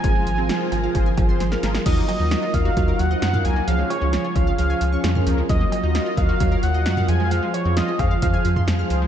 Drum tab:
CC |----------------|x---------------|----------------|----------------|
HH |x-x-x-x-x-x-x-x-|x-x-x-x-x-x-x-x-|x-x-x-x-x-x-x-x-|x-x-x-x-x-x-x-x-|
CB |------x---x-----|--x-------------|--x-------------|--x-------------|
SD |----o-------oooo|----o-------o---|----o-------o---|----o-------o---|
T2 |----------------|-------------o--|-------------o--|-------------o--|
BD |o-------o-o-----|o-----o-o-------|------o---------|o-----o-o-------|

CC |----------------|
HH |x-x-x-x-x-x-x-x-|
CB |------x---------|
SD |----o-------o---|
T2 |-----------o----|
BD |------o-o-------|